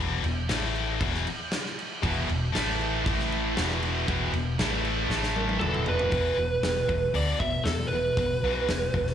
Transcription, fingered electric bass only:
0, 0, Header, 1, 2, 480
1, 0, Start_track
1, 0, Tempo, 511509
1, 1906, Time_signature, 4, 2, 24, 8
1, 8580, End_track
2, 0, Start_track
2, 0, Title_t, "Fingered electric bass"
2, 0, Program_c, 0, 33
2, 0, Note_on_c, 0, 28, 90
2, 210, Note_off_c, 0, 28, 0
2, 224, Note_on_c, 0, 28, 81
2, 448, Note_off_c, 0, 28, 0
2, 464, Note_on_c, 0, 33, 93
2, 911, Note_off_c, 0, 33, 0
2, 945, Note_on_c, 0, 28, 99
2, 1169, Note_off_c, 0, 28, 0
2, 1909, Note_on_c, 0, 28, 95
2, 2131, Note_off_c, 0, 28, 0
2, 2157, Note_on_c, 0, 28, 76
2, 2375, Note_off_c, 0, 28, 0
2, 2394, Note_on_c, 0, 33, 100
2, 2836, Note_off_c, 0, 33, 0
2, 2873, Note_on_c, 0, 33, 96
2, 3316, Note_off_c, 0, 33, 0
2, 3351, Note_on_c, 0, 28, 90
2, 3794, Note_off_c, 0, 28, 0
2, 3834, Note_on_c, 0, 28, 88
2, 4053, Note_off_c, 0, 28, 0
2, 4065, Note_on_c, 0, 28, 82
2, 4288, Note_off_c, 0, 28, 0
2, 4313, Note_on_c, 0, 33, 97
2, 4756, Note_off_c, 0, 33, 0
2, 4781, Note_on_c, 0, 33, 93
2, 5229, Note_off_c, 0, 33, 0
2, 5266, Note_on_c, 0, 28, 96
2, 5712, Note_off_c, 0, 28, 0
2, 5745, Note_on_c, 0, 28, 85
2, 5910, Note_off_c, 0, 28, 0
2, 5985, Note_on_c, 0, 28, 79
2, 6150, Note_off_c, 0, 28, 0
2, 6220, Note_on_c, 0, 28, 90
2, 6387, Note_off_c, 0, 28, 0
2, 6468, Note_on_c, 0, 28, 88
2, 6632, Note_off_c, 0, 28, 0
2, 6698, Note_on_c, 0, 38, 92
2, 6866, Note_off_c, 0, 38, 0
2, 6946, Note_on_c, 0, 28, 73
2, 7111, Note_off_c, 0, 28, 0
2, 7181, Note_on_c, 0, 40, 82
2, 7348, Note_off_c, 0, 40, 0
2, 7423, Note_on_c, 0, 28, 82
2, 7589, Note_off_c, 0, 28, 0
2, 7668, Note_on_c, 0, 28, 87
2, 7833, Note_off_c, 0, 28, 0
2, 7907, Note_on_c, 0, 35, 89
2, 8072, Note_off_c, 0, 35, 0
2, 8149, Note_on_c, 0, 28, 88
2, 8313, Note_off_c, 0, 28, 0
2, 8388, Note_on_c, 0, 28, 86
2, 8553, Note_off_c, 0, 28, 0
2, 8580, End_track
0, 0, End_of_file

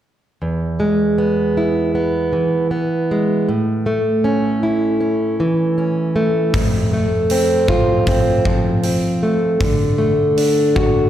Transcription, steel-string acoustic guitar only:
0, 0, Header, 1, 2, 480
1, 0, Start_track
1, 0, Tempo, 767067
1, 259, Time_signature, 4, 2, 24, 8
1, 6943, End_track
2, 0, Start_track
2, 0, Title_t, "Steel-string acoustic guitar"
2, 0, Program_c, 0, 25
2, 261, Note_on_c, 0, 40, 61
2, 499, Note_on_c, 0, 56, 58
2, 740, Note_on_c, 0, 59, 64
2, 984, Note_on_c, 0, 64, 58
2, 1212, Note_off_c, 0, 59, 0
2, 1219, Note_on_c, 0, 59, 62
2, 1455, Note_on_c, 0, 52, 53
2, 1460, Note_off_c, 0, 40, 0
2, 1688, Note_off_c, 0, 59, 0
2, 1695, Note_on_c, 0, 59, 54
2, 1699, Note_off_c, 0, 56, 0
2, 1948, Note_on_c, 0, 56, 58
2, 2177, Note_off_c, 0, 52, 0
2, 2178, Note_off_c, 0, 59, 0
2, 2181, Note_on_c, 0, 45, 66
2, 2182, Note_off_c, 0, 64, 0
2, 2184, Note_off_c, 0, 56, 0
2, 2417, Note_on_c, 0, 57, 59
2, 2655, Note_on_c, 0, 61, 67
2, 2897, Note_on_c, 0, 64, 61
2, 3124, Note_off_c, 0, 61, 0
2, 3132, Note_on_c, 0, 61, 64
2, 3379, Note_on_c, 0, 52, 62
2, 3381, Note_off_c, 0, 45, 0
2, 3608, Note_off_c, 0, 61, 0
2, 3615, Note_on_c, 0, 61, 63
2, 3850, Note_off_c, 0, 57, 0
2, 3853, Note_on_c, 0, 57, 63
2, 4093, Note_on_c, 0, 41, 66
2, 4098, Note_off_c, 0, 61, 0
2, 4099, Note_off_c, 0, 64, 0
2, 4100, Note_off_c, 0, 52, 0
2, 4334, Note_off_c, 0, 57, 0
2, 4337, Note_on_c, 0, 57, 59
2, 4575, Note_on_c, 0, 60, 67
2, 4812, Note_on_c, 0, 65, 71
2, 5051, Note_off_c, 0, 60, 0
2, 5059, Note_on_c, 0, 60, 69
2, 5297, Note_off_c, 0, 41, 0
2, 5298, Note_on_c, 0, 53, 56
2, 5525, Note_off_c, 0, 60, 0
2, 5532, Note_on_c, 0, 60, 60
2, 5539, Note_off_c, 0, 57, 0
2, 5774, Note_on_c, 0, 57, 56
2, 6011, Note_off_c, 0, 53, 0
2, 6014, Note_on_c, 0, 50, 65
2, 6017, Note_off_c, 0, 60, 0
2, 6017, Note_off_c, 0, 65, 0
2, 6018, Note_off_c, 0, 57, 0
2, 6247, Note_on_c, 0, 57, 58
2, 6492, Note_on_c, 0, 62, 59
2, 6732, Note_on_c, 0, 66, 68
2, 6943, Note_off_c, 0, 50, 0
2, 6943, Note_off_c, 0, 57, 0
2, 6943, Note_off_c, 0, 62, 0
2, 6943, Note_off_c, 0, 66, 0
2, 6943, End_track
0, 0, End_of_file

